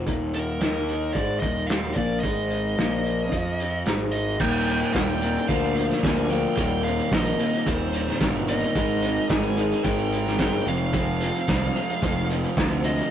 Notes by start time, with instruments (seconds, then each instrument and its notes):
0.07 picked electric bass D#1, clean electric guitar D#2 D#3, kick, closed hi-hat
0.33 lead electric guitar A#4, closed hi-hat
0.61 picked electric bass D#2, clean electric guitar D#3 D#4, snare, closed hi-hat
0.88 closed hi-hat
1.13 picked electric bass G#1, clean electric guitar G#2 G#3, lead electric guitar D5, kick, closed hi-hat
1.40 picked electric bass D#1, clean electric guitar D#2 D#3, lead electric guitar D#5, kick, closed hi-hat
1.67 lead electric guitar F5, snare, closed hi-hat
1.94 picked electric bass A#1, clean electric guitar A#2 A#3, lead electric guitar D5, kick, closed hi-hat
2.20 picked electric bass G#1, clean electric guitar G#2 G#3, lead electric guitar D#5, kick, closed hi-hat
2.51 closed hi-hat
2.78 picked electric bass A#1, clean electric guitar A#2 A#3, snare, closed hi-hat
3.06 closed hi-hat
3.32 picked electric bass F2, clean electric guitar F3 F4, kick, closed hi-hat
3.60 closed hi-hat
3.86 picked electric bass G#1, clean electric guitar G#2 G#3, snare, closed hi-hat
4.12 lead electric guitar D#5, closed hi-hat
4.40 picked electric bass D#1, clean electric guitar D#2 A#2 D#3, string machine G3 C4 D#4 A#4 D#5, lead electric guitar G5, kick, crash
4.67 closed hi-hat
4.94 picked electric bass D#1, clean electric guitar D#2 A#2 D#3, lead electric guitar G5, kick, snare, closed hi-hat
5.08 closed hi-hat
5.21 clean electric guitar D#2 A#2 D#3, closed hi-hat
5.36 closed hi-hat
5.48 picked electric bass D2, clean electric guitar A#2 F3 A#3, string machine F3 A#3 D4 D5, lead electric guitar F5, kick, closed hi-hat
5.63 closed hi-hat
5.77 lead electric guitar F5, closed hi-hat
5.90 snare, closed hi-hat
6.03 picked electric bass D2, clean electric guitar A#2 F3 A#3, lead electric guitar G#5, kick, snare, closed hi-hat
6.18 closed hi-hat
6.29 clean electric guitar A#2 F3 A#3, lead electric guitar G5, closed hi-hat
6.56 picked electric bass D#1, clean electric guitar D#2 A#2 D#3, string machine G3 C4 D#4 D#5, lead electric guitar G5, kick, closed hi-hat
6.84 lead electric guitar F5, closed hi-hat
6.99 closed hi-hat
7.12 picked electric bass A#1, clean electric guitar D#2 A#2 D#3, lead electric guitar D#5, kick, snare, closed hi-hat
7.26 closed hi-hat
7.40 clean electric guitar D#2 A#2 D#3, closed hi-hat
7.54 closed hi-hat
7.66 picked electric bass D#1, clean electric guitar D#2 A#2 D#3, lead electric guitar C5, kick, closed hi-hat
7.94 closed hi-hat
8.08 snare, closed hi-hat
8.20 picked electric bass G1, clean electric guitar D#2 A#2 D#3, kick, snare, closed hi-hat
8.48 clean electric guitar D#2 A#2 D#3, lead electric guitar D#5, closed hi-hat
8.62 closed hi-hat
8.75 picked electric bass G#1, clean electric guitar G#2 D#3 G#3, string machine G#3, kick, closed hi-hat
9.02 closed hi-hat
9.29 picked electric bass G#1, clean electric guitar G#2 D#3 G#3, lead electric guitar G#5, kick, snare, closed hi-hat
9.43 closed hi-hat
9.57 clean electric guitar G#2 D#3 G#3, closed hi-hat
9.71 closed hi-hat
9.83 picked electric bass G#1, clean electric guitar G#2 D#3 G#3, lead electric guitar G5, kick, closed hi-hat
9.99 closed hi-hat
10.12 closed hi-hat
10.26 snare, closed hi-hat
10.39 picked electric bass G1, clean electric guitar G#2 D#3 G#3, kick, snare, closed hi-hat
10.53 closed hi-hat
10.66 picked electric bass F1, clean electric guitar F2 C3 F3, string machine F4 C5 F5, lead electric guitar F5, closed hi-hat
10.93 clean electric guitar F2 C3 F3, kick, closed hi-hat
11.21 closed hi-hat
11.34 closed hi-hat
11.48 picked electric bass C2, clean electric guitar F2 C3 F3, kick, snare, closed hi-hat
11.62 closed hi-hat
11.75 clean electric guitar F2 C3 F3, closed hi-hat
11.89 closed hi-hat
12.02 picked electric bass F1, clean electric guitar F2 C3 F3, kick, closed hi-hat
12.30 closed hi-hat
12.43 closed hi-hat
12.57 picked electric bass D2, clean electric guitar F2 C3 F3, kick, snare, closed hi-hat
12.83 clean electric guitar F2 C3 F3, lead electric guitar D#5, closed hi-hat
12.98 closed hi-hat